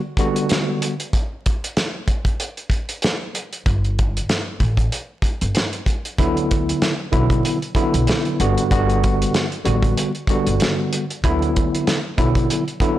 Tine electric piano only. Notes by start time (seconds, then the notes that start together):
0.19 D3 G3 B3 F#4
6.19 D3 F#3 B3 E4
7.12 D3 F#3 B3 E4
7.75 D3 F#3 B3 E4
8.40 D3 G3 B3 F#4
8.71 D3 G3 B3 F#4
9.64 D3 G3 B3 F#4
10.29 D3 G3 B3 F#4
11.24 D3 F#3 B3 E4
12.17 D3 F#3 B3 E4
12.81 D3 F#3 B3 E4